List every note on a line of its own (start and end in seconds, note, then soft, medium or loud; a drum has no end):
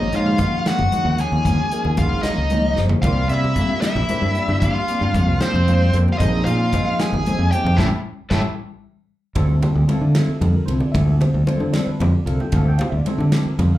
0.00 0.11 G#1 loud
0.00 0.12 D#4 medium
0.00 0.15 D#5 medium
0.12 0.38 G#2 medium
0.12 0.34 F3 medium
0.12 0.34 A#3 medium
0.12 0.29 A#3 soft
0.12 0.29 C#4 medium
0.12 0.34 D#4 medium
0.12 0.63 F4 medium
0.12 0.29 F#4 soft
0.12 0.34 G#4 medium
0.12 0.34 C#5 medium
0.12 closed hi-hat medium
0.12 low conga soft
0.16 0.69 F5 medium
0.26 low conga medium
0.38 0.55 D#3 medium
0.38 0.81 F3 medium
0.38 0.81 A#3 medium
0.38 0.56 A#3 medium
0.38 0.56 C#4 medium
0.38 0.81 D#4 medium
0.38 0.56 F#4 medium
0.38 0.81 G#4 medium
0.38 0.82 D#5 medium
0.38 kick medium
0.38 closed hi-hat medium
0.38 high conga medium
0.52 low conga soft
0.66 0.82 D#3 soft
0.66 0.82 A#3 medium
0.66 0.82 C#4 medium
0.66 0.82 F#4 medium
0.66 1.17 F#4 medium
0.66 1.20 F#5 medium
0.66 snare loud
0.66 closed hi-hat medium
0.79 0.92 F#1 medium
0.79 low conga medium
0.92 1.08 D#3 medium
0.92 1.13 F3 medium
0.92 1.13 A#3 medium
0.92 1.09 A#3 medium
0.92 1.09 C#4 medium
0.92 1.14 D#4 medium
0.92 1.09 F#4 medium
0.92 1.14 G#4 medium
0.92 1.14 D#5 medium
0.92 muted fingered electric bass stroke soft
0.92 closed hi-hat medium
0.92 high conga medium
0.92 low conga soft
1.05 1.18 D#2 medium
1.18 1.60 F3 medium
1.18 1.61 A#3 medium
1.18 1.35 A#3 soft
1.18 1.35 C#4 soft
1.18 1.61 D#4 medium
1.18 1.34 F#4 medium
1.18 1.61 G#4 medium
1.18 1.95 G#4 medium
1.18 1.61 C#5 medium
1.18 1.95 G#5 medium
1.18 closed hi-hat medium
1.32 1.57 D#2 medium
1.32 low conga medium
1.44 1.61 D#3 medium
1.44 1.61 A#3 medium
1.44 1.61 C#4 medium
1.44 1.61 F#4 medium
1.44 kick medium
1.44 closed hi-hat medium
1.44 high conga medium
1.59 low conga soft
1.71 1.92 F3 medium
1.71 1.92 A#3 medium
1.71 1.88 A#3 soft
1.71 1.88 C#4 soft
1.71 1.93 D#4 medium
1.71 1.87 F#4 medium
1.71 1.93 G#4 medium
1.71 1.93 A#4 medium
1.71 closed hi-hat medium
1.71 low conga soft
1.85 1.97 D#2 medium
1.85 low conga soft
1.97 2.11 C#2 medium
1.97 2.14 D#3 medium
1.97 2.40 F3 medium
1.97 2.14 A#3 medium
1.97 2.40 A#3 medium
1.97 2.14 C#4 medium
1.97 2.40 D#4 medium
1.97 2.24 F4 medium
1.97 2.14 F#4 medium
1.97 2.40 G#4 medium
1.97 2.40 A#4 medium
1.97 2.22 F5 medium
1.97 kick medium
1.97 closed hi-hat medium
1.97 high conga medium
2.12 2.24 G#1 medium
2.23 2.41 D#3 medium
2.23 2.41 A#3 medium
2.23 2.41 C#4 medium
2.23 2.40 F#4 medium
2.23 2.79 D#5 medium
2.23 snare loud
2.23 closed hi-hat medium
2.27 2.81 D#4 medium
2.38 2.75 C#2 medium
2.50 2.67 D#3 medium
2.50 2.72 F3 medium
2.50 2.67 A#3 medium
2.50 2.72 A#3 medium
2.50 2.67 C#4 medium
2.50 2.72 D#4 medium
2.50 2.67 F#4 medium
2.50 2.72 G#4 medium
2.50 2.73 C#5 medium
2.50 closed hi-hat medium
2.50 high conga medium
2.76 2.89 F#1 medium
2.76 3.03 F3 medium
2.76 3.04 A#3 soft
2.76 2.93 A#3 soft
2.76 2.93 C#4 soft
2.76 3.04 D#4 medium
2.76 2.93 F#4 soft
2.76 3.04 G#4 medium
2.76 3.04 C5 medium
2.76 snare medium
2.76 low conga soft
2.89 floor tom medium
2.89 low conga medium
3.02 3.28 C2 medium
3.02 3.19 F3 medium
3.02 3.25 G3 medium
3.02 3.19 A#3 medium
3.02 3.25 C4 medium
3.02 3.19 D4 medium
3.02 3.25 F4 medium
3.02 3.29 F4 medium
3.02 3.19 G4 medium
3.02 3.25 A#4 medium
3.02 3.25 D5 medium
3.02 3.27 F5 medium
3.02 kick loud
3.02 closed hi-hat medium
3.02 high conga medium
3.02 low conga soft
3.29 3.55 C3 medium
3.29 3.51 G3 medium
3.29 3.46 A#3 soft
3.29 3.51 C4 medium
3.29 3.46 D4 soft
3.29 3.80 E4 medium
3.29 3.51 F4 medium
3.29 3.45 G4 soft
3.29 3.51 A#4 medium
3.29 3.51 D5 medium
3.29 3.80 E5 medium
3.29 closed hi-hat soft
3.44 low conga medium
3.56 3.72 F3 medium
3.56 3.98 G3 medium
3.56 3.72 A#3 medium
3.56 3.98 C4 medium
3.56 3.72 D4 medium
3.56 3.99 F4 medium
3.56 3.72 G4 medium
3.56 3.99 A#4 medium
3.56 3.99 F5 medium
3.56 kick medium
3.56 closed hi-hat medium
3.56 high conga medium
3.71 low conga soft
3.81 3.98 F3 medium
3.81 3.98 A#3 medium
3.81 3.98 D4 medium
3.81 3.98 G4 medium
3.81 4.60 E5 medium
3.81 snare loud
3.81 closed hi-hat medium
3.86 4.59 E4 medium
3.95 4.08 A#1 medium
3.95 low conga medium
4.08 4.25 F3 medium
4.08 4.29 G3 medium
4.08 4.25 A#3 medium
4.08 4.30 C4 medium
4.08 4.25 D4 medium
4.08 4.30 F4 medium
4.08 4.25 G4 medium
4.08 4.30 A#4 medium
4.08 4.30 C5 medium
4.08 muted fingered electric bass stroke soft
4.08 closed hi-hat medium
4.08 high conga medium
4.08 low conga soft
4.22 4.34 G2 medium
4.34 4.78 G3 medium
4.34 4.51 A#3 soft
4.34 4.78 C4 medium
4.34 4.51 D4 soft
4.34 4.78 F4 medium
4.34 4.51 G4 soft
4.34 4.78 A#4 medium
4.34 closed hi-hat medium
4.39 4.79 D5 medium
4.48 4.73 G2 medium
4.48 low conga medium
4.60 4.77 F3 medium
4.60 4.77 A#3 medium
4.60 4.77 D4 medium
4.60 4.78 G4 medium
4.60 5.42 F5 medium
4.60 kick medium
4.60 closed hi-hat medium
4.60 high conga medium
4.60 low conga soft
4.64 5.38 F4 medium
4.88 5.09 G3 medium
4.88 5.04 A#3 soft
4.88 5.09 C4 medium
4.88 5.04 D4 soft
4.88 5.09 F4 medium
4.88 5.04 G4 medium
4.88 5.10 A#4 medium
4.88 5.10 D5 medium
4.88 closed hi-hat medium
4.88 low conga soft
5.01 5.14 G2 medium
5.01 low conga medium
5.14 5.27 F2 medium
5.14 5.30 F3 medium
5.14 5.56 G3 medium
5.14 5.30 A#3 medium
5.14 5.56 C4 medium
5.14 5.30 D4 medium
5.14 5.56 F4 medium
5.14 5.31 G4 medium
5.14 5.56 A#4 medium
5.14 5.57 C5 medium
5.14 kick medium
5.14 closed hi-hat medium
5.14 high conga medium
5.27 5.40 C2 medium
5.27 low conga soft
5.40 5.57 F3 medium
5.40 5.57 A#3 medium
5.40 5.97 C4 medium
5.40 5.57 D4 medium
5.40 5.56 G4 medium
5.40 5.96 C5 medium
5.40 snare loud
5.40 closed hi-hat medium
5.54 5.91 F2 medium
5.54 low conga medium
5.67 5.83 F3 medium
5.67 5.88 G3 medium
5.67 5.83 A#3 medium
5.67 5.88 C4 medium
5.67 5.83 D4 medium
5.67 5.88 F4 medium
5.67 5.83 G4 medium
5.67 5.88 A#4 medium
5.67 5.89 F5 medium
5.67 closed hi-hat medium
5.67 high conga medium
5.67 low conga soft
5.93 6.06 F2 medium
5.93 6.20 G3 medium
5.93 6.10 A#3 soft
5.93 6.20 C4 medium
5.93 6.09 D4 soft
5.93 6.21 F4 medium
5.93 6.09 G4 medium
5.93 6.21 A#4 medium
5.93 6.20 C5 medium
5.93 closed hi-hat medium
6.08 low conga medium
6.12 6.20 F4 medium
6.12 6.18 F5 medium
6.18 6.45 A#1 loud
6.18 6.35 F3 medium
6.18 6.41 F3 medium
6.18 6.41 A#3 medium
6.18 6.36 C4 medium
6.18 6.36 D#4 medium
6.18 6.45 D#4 medium
6.18 6.41 D#4 medium
6.18 6.36 G#4 medium
6.18 6.41 G#4 medium
6.18 6.42 C5 medium
6.18 6.44 D#5 medium
6.18 kick medium
6.18 closed hi-hat medium
6.18 high conga medium
6.18 low conga soft
6.45 6.71 A#2 loud
6.45 6.67 F3 medium
6.45 6.67 A#3 medium
6.45 6.63 C4 soft
6.45 6.67 D#4 medium
6.45 6.62 D#4 soft
6.45 6.96 F4 medium
6.45 6.62 G#4 medium
6.45 6.67 G#4 medium
6.45 6.67 C5 medium
6.45 7.00 F5 medium
6.45 closed hi-hat medium
6.45 low conga soft
6.73 6.88 F3 medium
6.73 7.15 F3 medium
6.73 7.15 A#3 medium
6.73 6.89 C4 medium
6.73 6.89 D#4 medium
6.73 7.15 D#4 medium
6.73 6.89 G#4 medium
6.73 7.15 G#4 medium
6.73 7.16 D#5 medium
6.73 kick medium
6.73 closed hi-hat medium
6.73 high conga medium
6.88 low conga soft
6.99 7.15 F3 medium
6.99 7.15 C4 medium
6.99 7.15 D#4 medium
6.99 7.15 G#4 medium
6.99 7.49 G#4 medium
6.99 7.51 G#5 medium
6.99 snare loud
6.99 closed hi-hat medium
7.13 7.25 G#1 medium
7.13 low conga medium
7.25 7.46 F3 medium
7.25 7.41 F3 medium
7.25 7.46 A#3 medium
7.25 7.41 C4 medium
7.25 7.46 D#4 medium
7.25 7.42 D#4 medium
7.25 7.46 G#4 medium
7.25 7.42 G#4 medium
7.25 7.47 C5 medium
7.25 muted fingered electric bass stroke soft
7.25 closed hi-hat medium
7.25 high conga medium
7.25 low conga soft
7.39 7.51 F2 medium
7.51 7.79 F3 medium
7.51 7.79 A#3 medium
7.51 7.68 C4 soft
7.51 7.68 D#4 soft
7.51 7.79 D#4 medium
7.51 7.76 G4 medium
7.51 7.67 G#4 soft
7.51 7.79 G#4 medium
7.51 7.80 C5 medium
7.51 7.77 G5 medium
7.51 closed hi-hat medium
7.64 7.77 F2 medium
7.64 low conga medium
7.77 7.88 A1 medium
7.77 7.86 A3 medium
7.77 7.87 A3 medium
7.77 7.86 C#4 loud
7.77 7.87 C#4 loud
7.77 7.86 E4 medium
7.77 7.87 E4 medium
7.77 7.86 G4 loud
7.77 7.86 A4 medium
7.77 7.86 E5 loud
7.77 7.86 G5 medium
7.77 7.86 A5 medium
7.77 kick medium
7.77 snare medium
7.77 high conga loud
8.30 8.41 A1 medium
8.30 8.39 A3 medium
8.30 8.39 C#4 medium
8.30 8.40 C#4 loud
8.30 8.39 E4 medium
8.30 8.40 E4 medium
8.30 8.39 G4 medium
8.30 8.39 A4 medium
8.30 8.40 E5 medium
8.30 8.40 G5 medium
8.30 8.40 A5 medium
8.30 kick medium
8.30 snare medium
8.30 high conga loud
9.35 9.61 D2 loud
9.35 9.57 D3 medium
9.35 9.52 F3 medium
9.35 9.57 G3 medium
9.35 9.52 C4 medium
9.35 9.57 C4 medium
9.35 9.52 E4 medium
9.35 9.57 F4 medium
9.35 9.52 A4 medium
9.35 9.57 A4 medium
9.35 kick medium
9.35 ride medium
9.35 high conga medium
9.35 low conga soft
9.50 low conga soft
9.61 9.83 D3 medium
9.61 9.83 G3 medium
9.61 9.83 C4 medium
9.61 9.83 F4 medium
9.61 9.84 A4 medium
9.61 ride medium
9.61 low conga medium
9.75 9.88 D2 medium
9.86 10.30 D3 medium
9.86 10.05 F3 medium
9.86 10.30 G3 medium
9.86 10.30 C4 medium
9.86 10.05 C4 medium
9.86 10.05 E4 medium
9.86 10.30 F4 medium
9.86 10.30 A4 medium
9.86 10.05 A4 medium
9.86 ride medium
9.86 high conga medium
10.01 10.14 D3 medium
10.15 10.31 F3 medium
10.15 10.31 C4 medium
10.15 10.31 E4 medium
10.15 10.31 A4 medium
10.15 snare loud
10.15 ride medium
10.15 low conga soft
10.28 muted fingered electric bass stroke soft
10.28 low conga soft
10.40 10.54 F2 medium
10.40 10.62 D3 medium
10.40 10.62 G3 medium
10.40 10.62 C4 medium
10.40 10.62 F4 medium
10.40 10.63 A4 medium
10.40 ride medium
10.40 high conga medium
10.40 low conga medium
10.56 10.68 A#4 medium
10.66 10.81 C2 medium
10.66 11.09 D3 medium
10.66 11.09 G3 medium
10.66 11.10 C4 medium
10.66 10.85 C4 soft
10.66 10.84 E4 soft
10.66 11.10 F4 medium
10.66 10.84 A4 soft
10.66 11.04 A4 medium
10.66 10.80 C5 medium
10.66 ride medium
10.80 10.94 D5 medium
10.80 low conga medium
10.92 11.20 D2 loud
10.92 11.10 F3 medium
10.92 11.10 C4 medium
10.92 11.11 E4 medium
10.92 11.11 A4 medium
10.92 11.06 E5 medium
10.92 kick loud
10.92 ride medium
10.92 high conga loud
10.92 low conga soft
11.05 11.14 A4 medium
11.05 low conga soft
11.20 11.41 D3 medium
11.20 11.42 G3 medium
11.20 11.42 C4 medium
11.20 11.42 F4 medium
11.20 11.42 C5 medium
11.20 ride medium
11.20 low conga medium
11.34 11.47 D2 medium
11.46 11.89 D3 medium
11.46 11.63 F3 medium
11.46 11.89 G3 medium
11.46 11.89 C4 medium
11.46 11.63 C4 medium
11.46 11.63 E4 medium
11.46 11.89 F4 medium
11.46 11.64 A4 medium
11.46 11.89 C5 medium
11.46 ride medium
11.46 high conga medium
11.60 11.73 D3 medium
11.60 low conga medium
11.72 11.90 F3 medium
11.72 11.90 C4 medium
11.72 11.90 E4 medium
11.72 11.90 A4 medium
11.72 11.86 D5 medium
11.72 snare loud
11.72 ride medium
11.72 low conga soft
11.87 12.00 B4 medium
11.87 muted fingered electric bass stroke soft
11.87 low conga soft
11.99 12.13 F2 medium
11.99 12.20 D3 medium
11.99 12.21 G3 medium
11.99 12.21 C4 medium
11.99 12.21 F4 medium
11.99 12.21 A4 medium
11.99 12.13 C5 medium
11.99 ride medium
11.99 high conga medium
11.99 low conga medium
12.15 12.27 D5 medium
12.25 12.39 C2 medium
12.25 12.68 D3 medium
12.25 12.68 G3 medium
12.25 12.68 C4 medium
12.25 12.43 C4 soft
12.25 12.43 E4 soft
12.25 12.68 F4 medium
12.25 12.42 A4 soft
12.25 12.69 A4 medium
12.25 12.40 F5 medium
12.25 ride medium
12.40 12.53 G5 medium
12.40 low conga medium
12.52 12.78 D2 loud
12.52 12.69 F3 medium
12.52 12.69 C4 medium
12.52 12.69 E4 medium
12.52 12.69 A4 medium
12.52 12.67 F5 medium
12.52 kick loud
12.52 ride medium
12.52 high conga medium
12.52 low conga soft
12.68 12.80 G5 medium
12.68 low conga soft
12.78 13.00 D3 medium
12.78 13.00 G3 medium
12.78 13.00 C4 medium
12.78 13.00 F4 medium
12.78 13.00 C5 medium
12.78 12.87 F5 medium
12.78 ride medium
12.78 low conga medium
12.90 13.05 D2 medium
12.90 12.98 E5 medium
12.97 13.06 D5 medium
13.05 13.47 D3 medium
13.05 13.21 F3 medium
13.05 13.47 G3 medium
13.05 13.47 C4 medium
13.05 13.22 C4 medium
13.05 13.22 E4 medium
13.05 13.48 F4 medium
13.05 13.19 A4 medium
13.05 13.22 A4 medium
13.05 13.20 C5 medium
13.05 muted fingered electric bass stroke soft
13.05 ride medium
13.05 high conga medium
13.18 13.31 D3 medium
13.18 13.33 A4 medium
13.18 low conga medium
13.31 13.48 F3 soft
13.31 13.48 C4 medium
13.31 13.48 E4 medium
13.31 13.46 G4 medium
13.31 13.48 A4 medium
13.31 snare loud
13.31 ride medium
13.31 low conga soft
13.46 13.60 A#4 medium
13.46 muted fingered electric bass stroke soft
13.46 low conga soft
13.57 13.71 F2 medium
13.57 13.78 D3 medium
13.57 13.78 G3 medium
13.57 13.78 C4 medium
13.57 13.78 F4 medium
13.57 13.78 A4 medium
13.57 ride medium
13.57 high conga medium
13.57 low conga medium
13.62 13.73 C5 medium
13.75 13.78 F5 medium